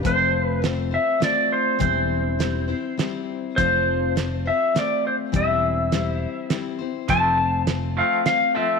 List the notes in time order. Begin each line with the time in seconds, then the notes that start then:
0.03 F1 F3 A3 C4 F4 C5, kick, closed hi-hat
0.46 B4
0.62 A3 C4 F4 C5, snare, closed hi-hat
0.91 C4 F4 C5 E5
1.20 A3 C4 F4 C5, snare, closed hi-hat
1.24 D5
1.52 C5
1.79 E1 E3 G3 C4 E4 C5, kick, closed hi-hat
2.39 G3 C4 E4 C5, snare, closed hi-hat
2.68 C4 E4 C5
2.97 G3 C4 E4 C5, snare, closed hi-hat
3.56 F1 F3 A3 C4 F4 C5, kick, closed hi-hat
4.16 A3 C4 F4 C5, snare, closed hi-hat
4.45 C4 F4 C5 E5
4.74 A3 C4 F4 C5, snare, closed hi-hat
4.79 D5
5.07 C5
5.32 E1 E3 G3 C4 E4 C5, kick, closed hi-hat
5.36 E5
5.92 G3 C4 E4 C5, snare, closed hi-hat
6.50 G3 C4 E4 C5, snare, closed hi-hat
6.79 C4 E4 C5
7.08 F1 F3 A3 C4 F4 C5 A5, kick, closed hi-hat
7.37 F3 A3
7.67 F3 A3 C4 F4 C5, snare, closed hi-hat
7.97 F3 A3 C4 F5
8.26 A3 C4 F4 C5 F5, snare, closed hi-hat
8.54 F3 A3 C4 F4 C5 E5